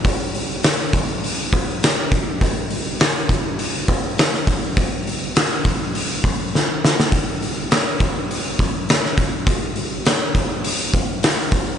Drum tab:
HH |o-o-o-o-o-o-o-o-|o-o-o-o-o-o-o-o-|o-o-o-o-o-o-----|o-o-o-o-o-o-o-o-|
SD |----o-------o---|----o-------oo--|----o-------o-oo|----o-------oo--|
BD |o-----o---o---o-|o-----o---o---o-|o-----o---o-----|o-----o---o---o-|

HH |o-o-o-o-o-o-o-o-|
SD |----o-------o---|
BD |o-----o---o---o-|